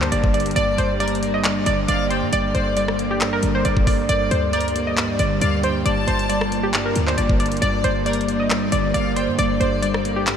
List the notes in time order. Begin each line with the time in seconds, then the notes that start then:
Already playing: D2 G2 D3 G3 A#3 D4 G4 C5
0.01 C5, clap
0.12 G1 A#3 D5, closed hi-hat
0.24 kick
0.34 D5, closed hi-hat
0.40 closed hi-hat
0.46 closed hi-hat
0.51 closed hi-hat
0.56 G1 G2 A#3 G4 D5, closed hi-hat
0.78 G1 C5, closed hi-hat
1.00 G3 A#4 D5, closed hi-hat
1.08 closed hi-hat
1.15 closed hi-hat
1.22 A#3 D5, closed hi-hat
1.34 D#5
1.44 G2, clap, closed hi-hat
1.66 G1 D3 D5, closed hi-hat
1.88 G1 A#3 D5 F5, closed hi-hat
2.10 C5 G5, closed hi-hat
2.22 G2
2.32 G1 G2 A4 D5, closed hi-hat
2.55 G1 C5, closed hi-hat
2.77 G3 D5, closed hi-hat
2.88 cross-stick
2.99 A#3, closed hi-hat
3.11 G4
3.21 G2, clap, closed hi-hat
3.33 A#4
3.43 G1 D3, closed hi-hat
3.55 C5
3.65 G1 A#3 D5, closed hi-hat
3.77 kick
3.87 D5, kick, open hi-hat
4.09 G1 G2 D4 G4 D5, closed hi-hat
4.31 D2 C5, closed hi-hat
4.53 G3 A#4 D5, closed hi-hat
4.61 closed hi-hat
4.68 closed hi-hat
4.75 A#3 D5, closed hi-hat
4.87 D#5
4.97 G2, clap, closed hi-hat
5.19 G1 D3 D5, closed hi-hat
5.41 D2 A#3 D5 F5, closed hi-hat
5.63 C5 G5, closed hi-hat
5.85 G1 G2 F4 D5 A5, closed hi-hat
6.07 G1 C5, closed hi-hat
6.19 closed hi-hat
6.29 G3 D5, closed hi-hat
6.41 cross-stick
6.52 A#3, closed hi-hat
6.63 G4
6.74 G2, clap, closed hi-hat
6.86 A#4
6.96 D2 D3, closed hi-hat
7.07 C5, clap
7.18 G1 A#3 D5, closed hi-hat
7.29 kick
7.40 D5, closed hi-hat
7.46 closed hi-hat
7.52 closed hi-hat
7.57 closed hi-hat
7.62 G1 G2 G4 D5, closed hi-hat
7.84 G1 C5, closed hi-hat
8.06 G3 A#4 D5, closed hi-hat
8.13 closed hi-hat
8.21 closed hi-hat
8.28 A#3 D5, closed hi-hat
8.40 D#5
8.50 G2, clap, closed hi-hat
8.72 G1 D3 D5, closed hi-hat
8.94 G1 A#3 D5 F5, closed hi-hat
9.16 C5 G5, closed hi-hat
9.28 G2
9.38 G1 G2 A4 D5, closed hi-hat
9.60 G1 C5, closed hi-hat
9.82 G3 D5, closed hi-hat
9.94 cross-stick
10.05 A#3, closed hi-hat
10.16 G4
10.27 G2, clap, closed hi-hat